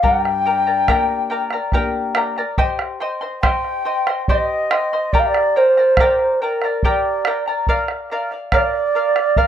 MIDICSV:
0, 0, Header, 1, 5, 480
1, 0, Start_track
1, 0, Key_signature, -2, "minor"
1, 0, Tempo, 847458
1, 23, Time_signature, 3, 2, 24, 8
1, 5365, End_track
2, 0, Start_track
2, 0, Title_t, "Charango"
2, 0, Program_c, 0, 24
2, 16, Note_on_c, 0, 67, 65
2, 19, Note_on_c, 0, 79, 66
2, 20, Note_on_c, 0, 70, 68
2, 21, Note_on_c, 0, 82, 71
2, 22, Note_on_c, 0, 74, 73
2, 251, Note_off_c, 0, 79, 0
2, 256, Note_off_c, 0, 70, 0
2, 257, Note_off_c, 0, 74, 0
2, 258, Note_on_c, 0, 79, 55
2, 259, Note_off_c, 0, 82, 0
2, 260, Note_off_c, 0, 67, 0
2, 262, Note_on_c, 0, 70, 51
2, 263, Note_on_c, 0, 74, 57
2, 265, Note_on_c, 0, 82, 54
2, 372, Note_off_c, 0, 82, 0
2, 375, Note_off_c, 0, 74, 0
2, 378, Note_off_c, 0, 70, 0
2, 379, Note_on_c, 0, 82, 44
2, 381, Note_off_c, 0, 79, 0
2, 382, Note_on_c, 0, 74, 41
2, 385, Note_on_c, 0, 70, 41
2, 496, Note_off_c, 0, 70, 0
2, 497, Note_off_c, 0, 74, 0
2, 501, Note_off_c, 0, 82, 0
2, 501, Note_on_c, 0, 67, 63
2, 503, Note_on_c, 0, 70, 68
2, 504, Note_on_c, 0, 74, 75
2, 506, Note_on_c, 0, 79, 71
2, 508, Note_on_c, 0, 82, 76
2, 729, Note_off_c, 0, 79, 0
2, 734, Note_off_c, 0, 70, 0
2, 735, Note_on_c, 0, 79, 55
2, 737, Note_off_c, 0, 74, 0
2, 740, Note_off_c, 0, 82, 0
2, 741, Note_on_c, 0, 70, 59
2, 742, Note_off_c, 0, 67, 0
2, 744, Note_on_c, 0, 74, 62
2, 747, Note_on_c, 0, 82, 62
2, 857, Note_off_c, 0, 82, 0
2, 860, Note_off_c, 0, 79, 0
2, 861, Note_off_c, 0, 74, 0
2, 862, Note_off_c, 0, 70, 0
2, 864, Note_on_c, 0, 82, 53
2, 867, Note_on_c, 0, 74, 48
2, 871, Note_on_c, 0, 70, 39
2, 979, Note_off_c, 0, 70, 0
2, 980, Note_off_c, 0, 74, 0
2, 982, Note_on_c, 0, 67, 74
2, 984, Note_off_c, 0, 82, 0
2, 986, Note_on_c, 0, 70, 83
2, 987, Note_on_c, 0, 74, 77
2, 988, Note_on_c, 0, 79, 70
2, 990, Note_on_c, 0, 82, 83
2, 1213, Note_off_c, 0, 79, 0
2, 1214, Note_off_c, 0, 70, 0
2, 1218, Note_off_c, 0, 74, 0
2, 1220, Note_on_c, 0, 79, 55
2, 1221, Note_off_c, 0, 82, 0
2, 1221, Note_on_c, 0, 70, 51
2, 1223, Note_off_c, 0, 67, 0
2, 1225, Note_on_c, 0, 74, 59
2, 1228, Note_on_c, 0, 82, 68
2, 1340, Note_off_c, 0, 82, 0
2, 1342, Note_off_c, 0, 79, 0
2, 1343, Note_off_c, 0, 70, 0
2, 1343, Note_off_c, 0, 74, 0
2, 1346, Note_on_c, 0, 82, 49
2, 1350, Note_on_c, 0, 74, 47
2, 1351, Note_on_c, 0, 70, 44
2, 1460, Note_off_c, 0, 74, 0
2, 1461, Note_off_c, 0, 70, 0
2, 1461, Note_on_c, 0, 67, 73
2, 1462, Note_on_c, 0, 75, 79
2, 1462, Note_on_c, 0, 79, 79
2, 1464, Note_off_c, 0, 82, 0
2, 1464, Note_on_c, 0, 72, 76
2, 1466, Note_on_c, 0, 84, 90
2, 1694, Note_off_c, 0, 79, 0
2, 1699, Note_off_c, 0, 72, 0
2, 1701, Note_off_c, 0, 75, 0
2, 1701, Note_off_c, 0, 84, 0
2, 1701, Note_on_c, 0, 79, 55
2, 1703, Note_off_c, 0, 67, 0
2, 1706, Note_on_c, 0, 72, 60
2, 1708, Note_on_c, 0, 75, 66
2, 1708, Note_on_c, 0, 84, 61
2, 1811, Note_off_c, 0, 84, 0
2, 1817, Note_on_c, 0, 84, 49
2, 1818, Note_off_c, 0, 75, 0
2, 1821, Note_off_c, 0, 72, 0
2, 1823, Note_off_c, 0, 79, 0
2, 1825, Note_on_c, 0, 75, 41
2, 1828, Note_on_c, 0, 72, 40
2, 1935, Note_off_c, 0, 72, 0
2, 1939, Note_off_c, 0, 75, 0
2, 1940, Note_off_c, 0, 84, 0
2, 1942, Note_on_c, 0, 67, 71
2, 1942, Note_on_c, 0, 72, 74
2, 1946, Note_on_c, 0, 75, 69
2, 1946, Note_on_c, 0, 79, 67
2, 1946, Note_on_c, 0, 84, 74
2, 2175, Note_off_c, 0, 79, 0
2, 2176, Note_off_c, 0, 72, 0
2, 2181, Note_off_c, 0, 75, 0
2, 2181, Note_off_c, 0, 84, 0
2, 2182, Note_on_c, 0, 72, 55
2, 2182, Note_on_c, 0, 79, 54
2, 2183, Note_off_c, 0, 67, 0
2, 2188, Note_on_c, 0, 75, 60
2, 2188, Note_on_c, 0, 84, 59
2, 2298, Note_off_c, 0, 84, 0
2, 2303, Note_off_c, 0, 72, 0
2, 2303, Note_off_c, 0, 75, 0
2, 2303, Note_off_c, 0, 79, 0
2, 2305, Note_on_c, 0, 84, 51
2, 2310, Note_on_c, 0, 75, 45
2, 2315, Note_on_c, 0, 72, 42
2, 2425, Note_off_c, 0, 84, 0
2, 2427, Note_off_c, 0, 72, 0
2, 2427, Note_off_c, 0, 75, 0
2, 2431, Note_on_c, 0, 67, 71
2, 2431, Note_on_c, 0, 79, 68
2, 2434, Note_on_c, 0, 72, 77
2, 2435, Note_on_c, 0, 75, 73
2, 2436, Note_on_c, 0, 84, 74
2, 2661, Note_off_c, 0, 72, 0
2, 2661, Note_off_c, 0, 79, 0
2, 2663, Note_off_c, 0, 75, 0
2, 2667, Note_off_c, 0, 84, 0
2, 2668, Note_off_c, 0, 67, 0
2, 2668, Note_on_c, 0, 72, 52
2, 2668, Note_on_c, 0, 79, 53
2, 2669, Note_on_c, 0, 75, 61
2, 2674, Note_on_c, 0, 84, 57
2, 2786, Note_off_c, 0, 72, 0
2, 2786, Note_off_c, 0, 79, 0
2, 2786, Note_off_c, 0, 84, 0
2, 2787, Note_off_c, 0, 75, 0
2, 2792, Note_on_c, 0, 84, 48
2, 2796, Note_on_c, 0, 75, 43
2, 2798, Note_on_c, 0, 72, 40
2, 2908, Note_on_c, 0, 79, 69
2, 2909, Note_off_c, 0, 84, 0
2, 2909, Note_on_c, 0, 67, 64
2, 2910, Note_off_c, 0, 72, 0
2, 2910, Note_off_c, 0, 75, 0
2, 2912, Note_on_c, 0, 70, 70
2, 2914, Note_on_c, 0, 74, 71
2, 2915, Note_on_c, 0, 82, 75
2, 3143, Note_off_c, 0, 79, 0
2, 3146, Note_off_c, 0, 70, 0
2, 3147, Note_off_c, 0, 67, 0
2, 3148, Note_off_c, 0, 74, 0
2, 3148, Note_off_c, 0, 82, 0
2, 3150, Note_on_c, 0, 79, 54
2, 3152, Note_on_c, 0, 70, 54
2, 3155, Note_on_c, 0, 74, 54
2, 3155, Note_on_c, 0, 82, 56
2, 3265, Note_off_c, 0, 82, 0
2, 3268, Note_off_c, 0, 79, 0
2, 3269, Note_off_c, 0, 70, 0
2, 3270, Note_off_c, 0, 74, 0
2, 3272, Note_on_c, 0, 82, 45
2, 3279, Note_on_c, 0, 74, 44
2, 3281, Note_on_c, 0, 70, 39
2, 3388, Note_off_c, 0, 82, 0
2, 3392, Note_off_c, 0, 74, 0
2, 3393, Note_off_c, 0, 70, 0
2, 3398, Note_on_c, 0, 67, 65
2, 3400, Note_on_c, 0, 70, 77
2, 3400, Note_on_c, 0, 79, 67
2, 3401, Note_on_c, 0, 74, 78
2, 3404, Note_on_c, 0, 82, 81
2, 3628, Note_off_c, 0, 79, 0
2, 3630, Note_off_c, 0, 70, 0
2, 3631, Note_off_c, 0, 67, 0
2, 3633, Note_off_c, 0, 74, 0
2, 3634, Note_off_c, 0, 82, 0
2, 3635, Note_on_c, 0, 79, 53
2, 3637, Note_on_c, 0, 70, 57
2, 3643, Note_on_c, 0, 74, 58
2, 3643, Note_on_c, 0, 82, 54
2, 3750, Note_off_c, 0, 79, 0
2, 3751, Note_off_c, 0, 70, 0
2, 3752, Note_off_c, 0, 82, 0
2, 3754, Note_off_c, 0, 74, 0
2, 3759, Note_on_c, 0, 82, 46
2, 3766, Note_on_c, 0, 74, 48
2, 3769, Note_on_c, 0, 70, 41
2, 3872, Note_off_c, 0, 82, 0
2, 3875, Note_off_c, 0, 70, 0
2, 3875, Note_off_c, 0, 74, 0
2, 3877, Note_on_c, 0, 79, 76
2, 3879, Note_on_c, 0, 67, 73
2, 3881, Note_on_c, 0, 70, 71
2, 3881, Note_on_c, 0, 74, 74
2, 3881, Note_on_c, 0, 82, 72
2, 4111, Note_off_c, 0, 70, 0
2, 4111, Note_off_c, 0, 79, 0
2, 4112, Note_off_c, 0, 67, 0
2, 4113, Note_off_c, 0, 74, 0
2, 4113, Note_off_c, 0, 82, 0
2, 4117, Note_on_c, 0, 79, 51
2, 4118, Note_on_c, 0, 70, 58
2, 4119, Note_on_c, 0, 74, 56
2, 4122, Note_on_c, 0, 82, 57
2, 4227, Note_off_c, 0, 82, 0
2, 4231, Note_off_c, 0, 79, 0
2, 4232, Note_off_c, 0, 70, 0
2, 4232, Note_off_c, 0, 74, 0
2, 4234, Note_on_c, 0, 82, 49
2, 4240, Note_on_c, 0, 74, 45
2, 4241, Note_on_c, 0, 70, 39
2, 4346, Note_off_c, 0, 70, 0
2, 4349, Note_off_c, 0, 74, 0
2, 4349, Note_off_c, 0, 82, 0
2, 4353, Note_on_c, 0, 70, 78
2, 4356, Note_on_c, 0, 74, 82
2, 4359, Note_on_c, 0, 77, 85
2, 4589, Note_off_c, 0, 70, 0
2, 4590, Note_off_c, 0, 74, 0
2, 4592, Note_off_c, 0, 77, 0
2, 4596, Note_on_c, 0, 70, 60
2, 4601, Note_on_c, 0, 77, 66
2, 4602, Note_on_c, 0, 74, 66
2, 4705, Note_off_c, 0, 77, 0
2, 4711, Note_off_c, 0, 70, 0
2, 4711, Note_on_c, 0, 77, 45
2, 4713, Note_off_c, 0, 74, 0
2, 4720, Note_on_c, 0, 74, 41
2, 4827, Note_off_c, 0, 74, 0
2, 4828, Note_off_c, 0, 77, 0
2, 4832, Note_on_c, 0, 70, 73
2, 4834, Note_on_c, 0, 74, 80
2, 4836, Note_on_c, 0, 77, 80
2, 5063, Note_off_c, 0, 70, 0
2, 5068, Note_off_c, 0, 74, 0
2, 5069, Note_on_c, 0, 70, 48
2, 5070, Note_off_c, 0, 77, 0
2, 5074, Note_on_c, 0, 74, 59
2, 5077, Note_on_c, 0, 77, 58
2, 5182, Note_off_c, 0, 77, 0
2, 5187, Note_off_c, 0, 70, 0
2, 5189, Note_off_c, 0, 74, 0
2, 5189, Note_on_c, 0, 77, 46
2, 5198, Note_on_c, 0, 74, 39
2, 5305, Note_off_c, 0, 74, 0
2, 5307, Note_off_c, 0, 77, 0
2, 5309, Note_on_c, 0, 70, 72
2, 5312, Note_on_c, 0, 74, 76
2, 5313, Note_on_c, 0, 77, 77
2, 5365, Note_off_c, 0, 70, 0
2, 5365, Note_off_c, 0, 74, 0
2, 5365, Note_off_c, 0, 77, 0
2, 5365, End_track
3, 0, Start_track
3, 0, Title_t, "Quena"
3, 0, Program_c, 1, 77
3, 25, Note_on_c, 1, 79, 94
3, 985, Note_off_c, 1, 79, 0
3, 1934, Note_on_c, 1, 79, 96
3, 2397, Note_off_c, 1, 79, 0
3, 2424, Note_on_c, 1, 75, 94
3, 2902, Note_on_c, 1, 74, 89
3, 2910, Note_off_c, 1, 75, 0
3, 2941, Note_on_c, 1, 77, 70
3, 2950, Note_off_c, 1, 74, 0
3, 2985, Note_on_c, 1, 74, 93
3, 2994, Note_off_c, 1, 77, 0
3, 3155, Note_on_c, 1, 72, 81
3, 3163, Note_off_c, 1, 74, 0
3, 3586, Note_off_c, 1, 72, 0
3, 3586, Note_on_c, 1, 72, 53
3, 3631, Note_on_c, 1, 70, 74
3, 3640, Note_off_c, 1, 72, 0
3, 3868, Note_off_c, 1, 70, 0
3, 3885, Note_on_c, 1, 74, 77
3, 4212, Note_off_c, 1, 74, 0
3, 4835, Note_on_c, 1, 74, 85
3, 5311, Note_on_c, 1, 77, 96
3, 5319, Note_off_c, 1, 74, 0
3, 5365, Note_off_c, 1, 77, 0
3, 5365, End_track
4, 0, Start_track
4, 0, Title_t, "Nylon-string guitar"
4, 0, Program_c, 2, 24
4, 25, Note_on_c, 2, 43, 59
4, 490, Note_off_c, 2, 43, 0
4, 507, Note_on_c, 2, 58, 43
4, 510, Note_on_c, 2, 62, 37
4, 514, Note_on_c, 2, 67, 45
4, 890, Note_off_c, 2, 58, 0
4, 891, Note_off_c, 2, 62, 0
4, 894, Note_off_c, 2, 67, 0
4, 983, Note_on_c, 2, 58, 45
4, 986, Note_on_c, 2, 62, 42
4, 988, Note_on_c, 2, 67, 50
4, 1368, Note_off_c, 2, 58, 0
4, 1368, Note_off_c, 2, 62, 0
4, 1370, Note_off_c, 2, 67, 0
4, 5365, End_track
5, 0, Start_track
5, 0, Title_t, "Bombo"
5, 20, Note_on_c, 9, 43, 60
5, 77, Note_off_c, 9, 43, 0
5, 144, Note_on_c, 9, 37, 44
5, 200, Note_off_c, 9, 37, 0
5, 382, Note_on_c, 9, 37, 21
5, 438, Note_off_c, 9, 37, 0
5, 500, Note_on_c, 9, 37, 65
5, 500, Note_on_c, 9, 43, 60
5, 556, Note_off_c, 9, 37, 0
5, 556, Note_off_c, 9, 43, 0
5, 616, Note_on_c, 9, 37, 19
5, 673, Note_off_c, 9, 37, 0
5, 737, Note_on_c, 9, 37, 21
5, 794, Note_off_c, 9, 37, 0
5, 852, Note_on_c, 9, 37, 53
5, 909, Note_off_c, 9, 37, 0
5, 974, Note_on_c, 9, 37, 21
5, 974, Note_on_c, 9, 43, 71
5, 1031, Note_off_c, 9, 37, 0
5, 1031, Note_off_c, 9, 43, 0
5, 1217, Note_on_c, 9, 37, 71
5, 1273, Note_off_c, 9, 37, 0
5, 1340, Note_on_c, 9, 37, 22
5, 1396, Note_off_c, 9, 37, 0
5, 1459, Note_on_c, 9, 43, 69
5, 1516, Note_off_c, 9, 43, 0
5, 1580, Note_on_c, 9, 37, 53
5, 1637, Note_off_c, 9, 37, 0
5, 1702, Note_on_c, 9, 37, 22
5, 1759, Note_off_c, 9, 37, 0
5, 1822, Note_on_c, 9, 37, 22
5, 1879, Note_off_c, 9, 37, 0
5, 1944, Note_on_c, 9, 37, 70
5, 1944, Note_on_c, 9, 43, 70
5, 2001, Note_off_c, 9, 37, 0
5, 2001, Note_off_c, 9, 43, 0
5, 2064, Note_on_c, 9, 37, 23
5, 2121, Note_off_c, 9, 37, 0
5, 2304, Note_on_c, 9, 37, 55
5, 2361, Note_off_c, 9, 37, 0
5, 2424, Note_on_c, 9, 43, 76
5, 2481, Note_off_c, 9, 43, 0
5, 2667, Note_on_c, 9, 37, 73
5, 2724, Note_off_c, 9, 37, 0
5, 2794, Note_on_c, 9, 37, 23
5, 2850, Note_off_c, 9, 37, 0
5, 2905, Note_on_c, 9, 43, 72
5, 2962, Note_off_c, 9, 43, 0
5, 3027, Note_on_c, 9, 37, 54
5, 3084, Note_off_c, 9, 37, 0
5, 3149, Note_on_c, 9, 37, 23
5, 3206, Note_off_c, 9, 37, 0
5, 3270, Note_on_c, 9, 37, 24
5, 3327, Note_off_c, 9, 37, 0
5, 3381, Note_on_c, 9, 37, 69
5, 3381, Note_on_c, 9, 43, 69
5, 3438, Note_off_c, 9, 37, 0
5, 3438, Note_off_c, 9, 43, 0
5, 3506, Note_on_c, 9, 37, 21
5, 3563, Note_off_c, 9, 37, 0
5, 3747, Note_on_c, 9, 37, 54
5, 3804, Note_off_c, 9, 37, 0
5, 3867, Note_on_c, 9, 43, 71
5, 3924, Note_off_c, 9, 43, 0
5, 4106, Note_on_c, 9, 37, 64
5, 4163, Note_off_c, 9, 37, 0
5, 4226, Note_on_c, 9, 37, 21
5, 4283, Note_off_c, 9, 37, 0
5, 4343, Note_on_c, 9, 43, 63
5, 4399, Note_off_c, 9, 43, 0
5, 4465, Note_on_c, 9, 37, 45
5, 4522, Note_off_c, 9, 37, 0
5, 4588, Note_on_c, 9, 37, 21
5, 4645, Note_off_c, 9, 37, 0
5, 4707, Note_on_c, 9, 37, 22
5, 4763, Note_off_c, 9, 37, 0
5, 4826, Note_on_c, 9, 37, 68
5, 4826, Note_on_c, 9, 43, 64
5, 4882, Note_off_c, 9, 37, 0
5, 4882, Note_off_c, 9, 43, 0
5, 4947, Note_on_c, 9, 37, 21
5, 5004, Note_off_c, 9, 37, 0
5, 5187, Note_on_c, 9, 37, 54
5, 5244, Note_off_c, 9, 37, 0
5, 5304, Note_on_c, 9, 43, 72
5, 5361, Note_off_c, 9, 43, 0
5, 5365, End_track
0, 0, End_of_file